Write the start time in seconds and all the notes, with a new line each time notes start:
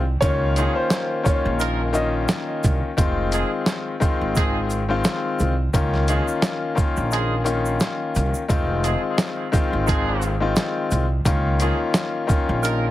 Already playing: C2
0.21 C#2 D#3 A#3 C#4 F4 C#5, kick, closed hi-hat, shaker
0.56 D#3 F3 A#3 C#4 D#4 F4 G#4, closed hi-hat, shaker
0.75 C5
0.90 snare, closed hi-hat, shaker
1.23 D#3 A#3 C#4 F4 C#5, kick, shaker
1.45 A#1
1.60 F3 D#4 A#4, closed hi-hat, shaker
1.93 D#3 A#3 C#4 F4 D#5, shaker
2.29 snare, closed hi-hat, shaker
2.64 C2, kick, shaker
2.97 F1 D#3 G#3 C4 F4, kick, closed hi-hat, shaker
3.32 F3 D#4 G#4, closed hi-hat, shaker
3.66 snare, closed hi-hat, shaker
4.00 D#3 G#3 C4 F4, kick, shaker
4.21 G#1
4.36 F3 D#4 G#4, kick, closed hi-hat, shaker
4.70 shaker
4.89 D#3 G#3 C4 F4
5.04 snare, closed hi-hat, shaker
5.39 C2, shaker
5.73 C#2 D#3 A#3 C#4 F4, kick, closed hi-hat, shaker
5.94 snare
6.08 D#3 F3 A#3 C#4 D#4 F4 G#4, closed hi-hat, shaker
6.28 shaker
6.42 snare, closed hi-hat, shaker
6.75 D#3 A#3 C#4 F4, kick, shaker
6.97 A#1, shaker
7.11 F3 D#4 G#4, closed hi-hat, shaker
7.44 D#3 A#3 C#4 F4, closed hi-hat, shaker
7.66 shaker
7.80 snare, closed hi-hat, shaker
8.15 C2, shaker
8.34 shaker
8.48 F1 D#3 G#3 C4 F4, kick, closed hi-hat, shaker
8.84 F3 D#4 G#4, closed hi-hat, shaker
9.18 snare, closed hi-hat, shaker
9.52 D#3 G#3 C4 F4, kick, shaker
9.73 G#1
9.87 F3 D#4 G#4, kick, closed hi-hat, shaker
10.22 shaker
10.40 D#3 G#3 C4 F4
10.56 snare, closed hi-hat, shaker
10.91 C2, shaker
11.25 C#2 D#3 A#3 C#4 F4, kick, closed hi-hat, shaker
11.60 D#3 F3 A#3 C#4 D#4 F4 G#4, closed hi-hat, shaker
11.94 snare, closed hi-hat, shaker
12.27 D#3 A#3 C#4 F4, kick, shaker
12.49 A#1
12.63 F3 D#4 A#4, closed hi-hat, shaker